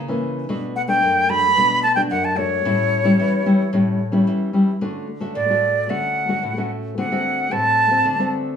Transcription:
0.00 0.46 C#3 medium
0.08 0.45 E3 medium
0.08 0.45 A#3 medium
0.08 0.45 C#4 medium
0.49 1.00 B2 medium
0.49 0.74 A3 medium
0.49 0.75 D4 medium
0.49 0.75 F#4 medium
0.76 0.82 F#5 loud
0.88 1.25 A3 medium
0.88 1.25 D4 medium
0.88 1.31 G5 loud
1.02 1.54 F#2 medium
1.29 1.46 A3 medium
1.29 1.46 D4 medium
1.29 1.46 F#4 medium
1.29 1.82 B5 loud
1.57 2.09 B2 medium
1.57 1.83 A3 medium
1.57 1.83 D4 medium
1.57 1.83 F#4 medium
1.83 1.95 A5 loud
1.95 2.33 A3 medium
1.95 2.33 D4 medium
1.95 2.33 F#4 medium
1.95 2.01 G5 loud
2.10 2.62 F#2 medium
2.10 2.26 F#5 medium
2.24 2.38 A5 medium
2.37 2.61 A3 medium
2.37 2.61 D4 medium
2.37 2.61 F#4 medium
2.37 4.27 C#5 loud
2.65 3.17 A2 medium
2.65 3.01 G3 medium
2.65 3.02 C#4 medium
2.65 3.02 E4 medium
3.04 3.41 G3 medium
3.04 3.41 C#4 medium
3.04 3.41 E4 medium
3.20 3.71 E3 medium
3.46 3.62 G3 medium
3.46 3.62 C#4 medium
3.46 3.62 E4 medium
3.73 4.24 A2 medium
3.73 3.98 G3 medium
3.73 3.99 C#4 medium
3.73 3.99 E4 medium
4.12 4.49 G3 medium
4.12 4.49 C#4 medium
4.12 4.49 E4 medium
4.27 4.79 E3 medium
4.53 4.70 G3 medium
4.53 4.70 C#4 soft
4.53 4.70 E4 medium
4.81 5.33 D3 medium
4.81 5.07 A3 medium
4.81 5.07 C#4 medium
4.81 5.07 F#4 medium
5.20 5.44 A3 medium
5.20 5.44 C#4 medium
5.20 5.44 F#4 medium
5.35 5.87 A2 medium
5.35 5.91 D5 medium
5.50 5.86 A3 medium
5.50 5.86 F#4 medium
5.89 6.41 D3 medium
5.89 6.26 A3 medium
5.89 6.26 C#4 soft
5.89 6.26 F#4 medium
5.89 6.71 F#5 medium
6.28 6.52 A3 medium
6.28 6.52 C#4 medium
6.28 6.52 F#4 medium
6.43 6.94 A2 medium
6.57 6.93 A3 medium
6.57 6.93 C#4 medium
6.57 6.94 F#4 medium
6.98 7.49 D3 medium
6.98 7.06 A3 medium
6.98 7.06 C4 medium
6.98 7.06 F#4 medium
6.98 7.53 F#5 medium
7.11 7.47 A3 medium
7.11 7.48 C4 medium
7.11 7.48 F#4 medium
7.51 8.03 A2 medium
7.51 7.88 A3 medium
7.51 7.88 C4 medium
7.51 7.88 F#4 medium
7.51 8.33 A5 loud
7.90 8.14 A3 medium
7.90 8.14 C4 medium
7.90 8.14 F#4 medium
8.05 8.56 D3 medium
8.19 8.55 A3 medium
8.19 8.56 C4 medium
8.19 8.56 F#4 medium

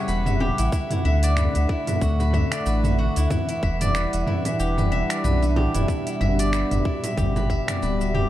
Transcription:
0.00 0.72 C#3 medium
0.00 0.73 G3 medium
0.00 1.57 B3 medium
0.00 0.58 E4 medium
0.00 0.40 G4 medium
0.00 1.29 C#5 medium
0.00 0.26 E5 loud
0.00 8.29 F#5 medium
0.08 0.52 E1 medium
0.08 1.37 B4 medium
0.08 cabasa medium
0.26 1.05 E5 medium
0.26 mid tom medium
0.26 cabasa soft
0.40 2.08 G4 medium
0.40 frame drum medium
0.58 0.69 A1 medium
0.58 0.72 E4 medium
0.58 open hi-hat medium
0.58 cabasa medium
0.72 3.30 D3 medium
0.72 0.91 E4 medium
0.72 kick loud
0.72 cabasa medium
0.91 1.69 E4 medium
0.91 mid tom medium
0.91 open hi-hat soft
0.91 cabasa soft
0.98 3.30 A3 medium
1.05 1.48 D2 loud
1.05 1.55 E5 medium
1.23 2.52 D5 loud
1.23 open hi-hat medium
1.23 cabasa medium
1.37 2.20 B4 medium
1.37 finger snap medium
1.37 mid tom medium
1.37 cabasa medium
1.55 1.66 D2 medium
1.55 1.87 E5 medium
1.55 open hi-hat soft
1.55 cabasa soft
1.69 3.16 E4 medium
1.69 kick loud
1.87 2.34 E5 medium
1.87 mid tom medium
1.87 open hi-hat soft
1.87 frame drum medium
1.87 cabasa medium
2.02 2.45 D2 medium
2.02 2.98 F#4 medium
2.02 kick loud
2.02 cabasa medium
2.20 2.66 B4 medium
2.20 frame drum medium
2.20 cabasa soft
2.33 2.84 E5 loud
2.33 kick medium
2.33 mid tom medium
2.52 3.81 D5 medium
2.52 finger snap medium
2.52 open hi-hat medium
2.52 cabasa medium
2.66 3.10 A1 medium
2.66 3.95 B4 medium
2.66 cabasa medium
2.84 3.62 E5 medium
2.84 mid tom medium
2.84 cabasa soft
2.98 4.65 F#4 medium
3.16 3.27 D2 medium
3.16 3.30 E4 medium
3.16 open hi-hat soft
3.16 cabasa medium
3.30 5.88 E3 medium
3.30 3.48 E4 medium
3.30 kick loud
3.30 mid tom medium
3.30 cabasa medium
3.48 8.29 G3 medium
3.48 4.27 E4 medium
3.48 open hi-hat soft
3.48 cabasa soft
3.63 4.06 E1 loud
3.63 4.13 E5 loud
3.63 kick loud
3.81 5.10 D5 loud
3.81 mid tom medium
3.81 open hi-hat medium
3.81 cabasa medium
3.95 4.78 B4 medium
3.95 finger snap medium
3.95 cabasa medium
4.13 4.24 E1 medium
4.13 4.45 E5 medium
4.13 open hi-hat soft
4.13 cabasa soft
4.27 5.74 E4 medium
4.27 mid tom medium
4.45 8.29 D4 medium
4.45 4.91 E5 medium
4.45 open hi-hat medium
4.45 frame drum medium
4.45 cabasa medium
4.59 5.03 E1 medium
4.59 5.56 G4 medium
4.59 cabasa soft
4.78 5.24 B4 medium
4.78 mid tom medium
4.78 cabasa soft
4.92 5.42 E5 loud
5.10 6.39 D5 medium
5.10 finger snap medium
5.10 open hi-hat medium
5.10 cabasa medium
5.24 5.68 B1 medium
5.24 6.53 B4 medium
5.24 mid tom medium
5.24 cabasa medium
5.42 6.20 E5 medium
5.42 cabasa soft
5.56 7.17 G4 medium
5.56 frame drum medium
5.74 5.85 E1 medium
5.74 5.88 E4 medium
5.74 mid tom medium
5.74 open hi-hat medium
5.74 cabasa medium
5.88 8.29 B2 medium
5.88 6.06 E4 medium
5.88 kick loud
5.88 cabasa medium
6.07 6.85 E4 medium
6.07 open hi-hat soft
6.07 cabasa soft
6.21 6.64 G1 loud
6.21 6.71 E5 loud
6.21 mid tom medium
6.39 7.68 D5 loud
6.39 open hi-hat medium
6.39 cabasa medium
6.53 7.35 B4 medium
6.53 finger snap medium
6.53 cabasa soft
6.71 6.82 G1 medium
6.71 7.03 E5 medium
6.71 mid tom medium
6.71 open hi-hat soft
6.71 cabasa soft
6.85 8.29 E4 medium
6.85 kick loud
7.04 7.50 E5 medium
7.04 open hi-hat medium
7.04 frame drum medium
7.04 cabasa medium
7.17 7.61 G1 medium
7.17 8.14 G4 medium
7.17 kick medium
7.17 mid tom medium
7.17 cabasa soft
7.36 7.82 B4 medium
7.36 frame drum medium
7.36 cabasa soft
7.50 8.01 E5 loud
7.50 kick medium
7.68 8.29 D5 medium
7.68 finger snap medium
7.68 mid tom medium
7.68 open hi-hat medium
7.68 cabasa medium
7.82 8.26 D1 medium
7.82 8.29 B4 medium
7.82 cabasa soft
8.01 8.29 E5 medium
8.01 cabasa soft
8.14 8.29 G4 medium
8.14 mid tom medium

